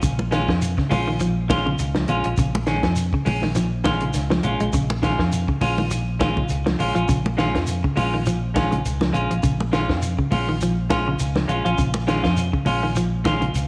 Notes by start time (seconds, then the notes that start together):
0.03 A#1 C#3, kick, closed hi-hat, shekere
0.19 high conga
0.31 D#3 G#3 C#4 F4, snare, closed hi-hat, shekere
0.49 F2 F3, kick, snare
0.62 closed hi-hat, shekere
0.78 C#3, muted fingered electric bass stroke, kick, snare
0.90 A#1 G#3 C#4 F4, open hi-hat, high conga, low conga, shekere
1.08 D#3
1.20 F3, closed hi-hat, shekere
1.49 D#3 G#3 C#4 F4, kick, snare, closed hi-hat, high conga, shekere
1.66 C#3, low conga
1.79 C#2, closed hi-hat, shekere
1.95 F3, snare, high conga
2.08 A#1 G#3 C#4 F4, closed hi-hat, low conga, shekere
2.24 A#1, muted clean electric guitar stroke, closed hi-hat
2.37 A#1 C#3, kick, closed hi-hat, shekere
2.55 high conga
2.66 D#3 G#3 C#4, muted clean electric guitar stroke, snare, closed hi-hat, shekere
2.83 F2 F3, kick, snare, closed hi-hat
2.96 closed hi-hat, shekere
3.13 C#3, muted fingered electric bass stroke, kick
3.25 A#1 G#3 C#4, muted clean electric guitar stroke, open hi-hat, high conga, low conga, shekere
3.42 D#3, snare, high conga
3.55 F3, snare, closed hi-hat, shekere
3.84 D#3 G#3 C#4 F4, kick, snare, closed hi-hat, high conga, shekere
4.01 C#3, closed hi-hat
4.14 C#2, snare, closed hi-hat, shekere
4.30 F3, snare, high conga
4.43 A#1 G#3 C#4 F4, closed hi-hat, high conga, low conga, shekere
4.60 A#1 G#3, closed hi-hat
4.73 A#1 C#3, kick, closed hi-hat, shekere
4.90 high conga
5.02 D#3 G#3 C#4 F4, kick, snare, closed hi-hat, shekere
5.19 F2 F3, kick, snare
5.32 closed hi-hat, shekere
5.48 C#3, muted fingered electric bass stroke, kick
5.61 A#1 G#3 C#4 F4, open hi-hat, high conga, low conga, shekere
5.78 D#3, high conga
5.91 muted clean electric guitar stroke, closed hi-hat, shekere
6.19 D#3 G#3 C#4 F4, kick, snare, closed hi-hat, high conga, shekere
6.37 C#3, kick, low conga
6.49 C#2, closed hi-hat, shekere
6.66 F3, snare, high conga
6.79 A#1 G#3 C#4 F4, open hi-hat, low conga, shekere
6.95 A#1 F3 C#4 F4, closed hi-hat
7.09 A#1 C#3, kick, closed hi-hat, shekere
7.26 high conga
7.37 D#3 G#3 C#4 F4, snare, closed hi-hat, shekere
7.55 F2 F3, kick, snare, closed hi-hat
7.67 closed hi-hat, shekere
7.84 C#3, muted fingered electric bass stroke, kick
7.96 A#1 G#3 C#4 F4, open hi-hat, high conga, low conga, shekere
8.14 D#3
8.26 F3, closed hi-hat, shekere
8.54 D#3 G#3 C#4 F4, kick, snare, closed hi-hat, high conga, shekere
8.71 C#3, closed hi-hat, high conga
8.86 C#2, closed hi-hat, shekere
9.01 F3, snare, high conga
9.13 A#1 G#3 C#4 F4, closed hi-hat, low conga, shekere
9.31 A#1 F3, closed hi-hat
9.43 A#1 C#3, kick, closed hi-hat, shekere
9.60 high conga
9.72 D#3 G#3 C#4 F4, snare, closed hi-hat, shekere
9.89 F2 F3, kick, snare
10.02 closed hi-hat, shekere
10.19 C#3, muted fingered electric bass stroke, kick
10.31 A#1 G#3 C#4 F4, open hi-hat, high conga, low conga, shekere
10.49 D#3
10.61 F3, closed hi-hat, shekere
10.90 G#3 C#4 F4, kick, snare, closed hi-hat, high conga, shekere
11.08 C#3
11.19 C#2, closed hi-hat, shekere
11.36 F3, snare, high conga
11.48 A#1 G#3 C#4 F4, closed hi-hat, low conga, shekere
11.65 A#1 F3 C#4 F4, closed hi-hat
11.78 A#1 C#3, kick, closed hi-hat, shekere
11.94 high conga
12.07 D#3 G#3 C#4 F4, snare, closed hi-hat, shekere
12.23 F2 F3 C#4 F4, kick, snare, closed hi-hat
12.37 closed hi-hat, shekere
12.53 C#3, muted fingered electric bass stroke, kick
12.65 A#1 G#3 C#4 F4, open hi-hat, high conga, low conga, shekere
12.83 D#3
12.96 F3, closed hi-hat, shekere
13.24 D#3 G#3 C#4 F4, kick, snare, closed hi-hat, high conga, shekere
13.41 C#3, closed hi-hat, high conga
13.54 C#2, closed hi-hat, shekere